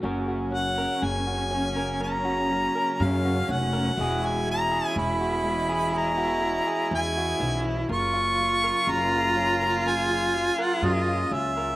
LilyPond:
<<
  \new Staff \with { instrumentName = "Harmonica" } { \time 4/4 \key fis \major \tempo 4 = 61 r8 fis''8 gis''4 ais''4 eis''8 fis''8~ | fis''16 gis''16 ais''8 b''4 ais''4 gis''8. r16 | cis'''4 ais''4 gis''8. fis''16 dis''8 e''8 | }
  \new Staff \with { instrumentName = "Cello" } { \time 4/4 \key fis \major cis'1 | e'1 | eis'1 | }
  \new Staff \with { instrumentName = "Clean electric guitar" } { \time 4/4 \key fis \major << { <fis cis' fis' ais'>16 fis'8 ais'8 fis'16 cis'16 ais'16 ais'16 fis'8 ais'8 fis'16 cis'16 ais'16 | <gis fis' gis'>16 fis'8 gis'8 fis'8 gis'16 gis'16 fis'8 gis'8 fis'8. | ais'16 eis'8 ais'8 eis'16 cis'16 ais'16 ais'16 eis'8 ais'8 eis'16 cis'16 ais'16 | } \\ { fis,8 fis8 cis8 fis8 fis,8 fis8 cis8 fis8 | e8 gis8 b,8 gis8 e8 gis8 b,8 dis16 e16 | fis,8 fis8 cis8 fis8 fis,8 fis8 cis8 fis8 | } >> }
  \new Staff \with { instrumentName = "String section" } { \time 4/4 \key fis \major << { <cis fis ais>1 | <e gis b dis''>1 | <cis fis ais eis'>1 | } \\ { cis'1~ | cis'1~ | cis'2 gis'2 | } >> }
  \new Staff \with { instrumentName = "Upright bass" } { \clef bass \time 4/4 \key fis \major fis,,4 fis,,2 fis,8 eis,,8 | e,,4 e,,2 e,8 b,,8 | fis,,4 fis,,2 fis,8 cis,8 | }
>>